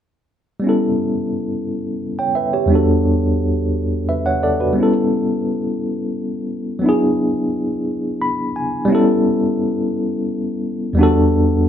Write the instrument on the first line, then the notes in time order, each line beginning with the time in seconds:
tine electric piano
0.60 G3 B3
0.64 C#4 E4
0.69 A4
2.19 C#5 G5
2.35 B4 E5
2.53 G4 C#5
2.66 E2 G3 B3
2.72 D4 F#4 A4
4.09 B4 E5
4.26 C#5 F#5
4.43 A4 D5
4.60 F#4 B4
4.73 G3 B3
4.78 C#4 E4
4.83 A4
6.79 F#3 B3
6.84 D4 E4
6.89 G#4
8.22 B5
8.56 G#5
8.85 G3 B3
8.90 C#4 E4
8.95 A4
10.93 E2 G3 B3
10.99 D4 F#4
11.03 A4